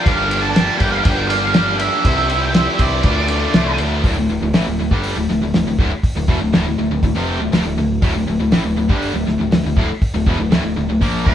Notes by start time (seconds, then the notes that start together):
0.03 G1 G2 D3 F5, kick, ride
0.07 G3 A#3 D4 G4
0.31 G3 A#3 D4 G4, ride
0.41 A5
0.56 G3 A#3 D4 G4, snare, ride
0.78 G1 D4 G4 G5, kick, ride
0.82 G3 A#3
0.91 F5
1.03 G1 G2 D3 G3 A#3 G5, kick, ride
1.08 D4 G4
1.28 D4 G4 F5, ride
1.32 G2 D3 G3 A#3
1.54 G2 D3 G3 A#3 D4 G4, snare, ride
1.78 A#3 D4 G4 E5, ride
1.82 G3
2.04 C2 C3 G3 C4 E4 G4 C5, kick, ride
2.29 C4 E4 G4 C5, ride
2.42 G5
2.54 C4 E4 G4 C5 E5, snare, ride
2.79 C2 C4 E4 G4 C5 D5, kick, ride
3.03 D2 A2 D3 A3 F4, kick, ride
3.28 A3 F4, ride
3.33 D3
3.54 C2 A2 D3 A3 F4, snare, ride
3.78 D2 D3 A3 F4, ride
4.04 D1 D2 A2, kick, open hi-hat
4.16 D1 D2 A2
4.29 D1 D2 A2
4.41 D1 D2 A2
4.54 A1 A2 E3, snare, open hi-hat
4.68 D1 D2 A2
4.80 D1 D2 A2
4.91 G1 G2 D3 G3, kick
5.03 open hi-hat
5.16 D1 D2 A2
5.29 D1 D2 A2, snare
5.41 D1 D2 A2
5.54 D1 D2 A2, snare, open hi-hat
5.66 D1 D2 A2
5.79 D1 D2 A2, kick
6.03 kick, open hi-hat
6.16 D1 D2 A2
6.28 E1 E2 B2, kick
6.41 D1 D2 A2
6.53 D1 D2 A2, snare, open hi-hat
6.66 D1 D2 A2
6.78 D1 D2 A2
6.90 D1 D2 A2
7.03 D1 D2 A2, kick, open hi-hat
7.15 F1 F2 C3 F3
7.40 D1 D2 A2
7.51 D1 D2 A2, snare, open hi-hat
7.64 D1 D2 A2
7.77 D1 D2 A2
8.02 D1 D2 A2, kick, open hi-hat
8.15 D1 D2 A2
8.28 D1 D2 A2
8.40 D1 D2 A2
8.52 A1 A2 E3, snare, open hi-hat
8.65 D1 D2 A2
8.77 D1 D2 A2
8.89 G1 G2 D3 G3, kick
9.02 open hi-hat
9.14 D1 D2 A2
9.26 D1 D2 A2, snare
9.39 D1 D2 A2
9.51 D1 D2 A2, snare, open hi-hat
9.64 D1 D2 A2
9.77 D1 D2 A2, kick
10.02 kick, open hi-hat
10.14 D1 D2 A2
10.27 E1 E2 B2, kick
10.39 D1 D2 A2
10.51 D1 D2 A2, snare, open hi-hat
10.63 D1 D2 A2
10.77 D1 D2 A2
10.89 D1 D2 A2
11.02 A#1 A#2 F3 A#3, kick, open hi-hat
11.25 D1 D2 A2 C5, kick